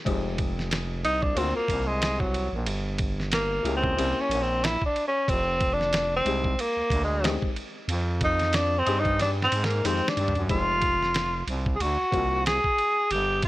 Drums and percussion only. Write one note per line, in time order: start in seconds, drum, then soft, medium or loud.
0.06 kick loud
0.06 ride medium
0.38 kick loud
0.38 ride medium
0.59 snare soft
0.71 snare loud
0.71 hi-hat pedal soft
0.71 ride medium
1.05 ride medium
1.22 kick medium
1.37 ride medium
1.68 kick medium
1.68 ride medium
2.02 snare loud
2.02 hi-hat pedal soft
2.02 ride medium
2.20 kick medium
2.34 ride medium
2.66 ride medium
2.98 kick loud
2.98 ride medium
3.20 snare soft
3.32 snare loud
3.32 hi-hat pedal soft
3.32 ride medium
3.65 ride medium
3.84 kick medium
3.98 ride medium
4.31 ride medium
4.64 snare loud
4.64 hi-hat pedal soft
4.64 ride medium
4.82 kick medium
4.96 ride soft
5.28 kick loud
5.28 ride medium
5.61 kick loud
5.61 ride medium
5.81 snare soft
5.93 snare loud
5.93 hi-hat pedal soft
5.93 ride medium
6.26 ride medium
6.44 kick medium
6.59 ride medium
6.90 kick medium
6.90 ride medium
7.24 snare loud
7.24 hi-hat pedal soft
7.24 ride medium
7.42 kick medium
7.56 ride soft
7.89 ride medium
8.21 kick loud
8.21 ride medium
8.39 snare soft
8.39 ride soft
8.53 snare loud
8.53 hi-hat pedal soft
8.53 ride medium
8.87 ride medium
9.05 kick medium
9.05 ride soft
9.19 snare medium
9.19 ride medium
9.42 snare medium
9.52 ride medium
9.64 snare medium
9.70 ride soft
9.85 hi-hat pedal medium
9.85 ride medium
10.08 snare medium
10.17 ride medium
10.28 floor tom medium
10.35 ride soft
10.49 kick loud
10.49 ride medium
10.82 kick medium
10.82 ride medium
11.03 snare soft
11.14 snare loud
11.14 hi-hat pedal soft
11.14 ride medium
11.48 ride medium
11.66 kick medium
11.80 ride medium
12.12 kick medium
12.12 ride medium
12.46 snare loud
12.46 hi-hat pedal soft
12.46 ride medium
12.64 kick medium
12.78 ride soft
13.11 ride medium
13.42 kick loud
13.42 ride medium